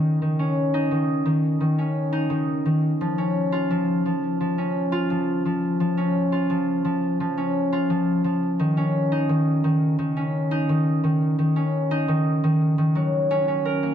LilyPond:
\new Staff \with { instrumentName = "Harp" } { \clef bass \time 4/4 \key cis \mixolydian \tempo 4 = 86 dis16 dis16 cis'8 dis'16 dis8 dis8 dis16 cis'8 dis'16 dis8 dis16 | r16 eis16 cis'8 eis'16 eis8 eis8 eis16 cis'8 eis'16 eis8 eis16~ | eis16 eis16 cis'8 eis'16 eis8 eis8 eis16 cis'8 eis'16 eis8 eis16 | r16 dis16 cis'8 dis'16 dis8 dis8 dis16 cis'8 dis'16 dis8 dis16~ |
dis16 dis16 cis'8 dis'16 dis8 dis8 dis16 fis16 r16 cis'16 cis'16 ais'16 ais16 | }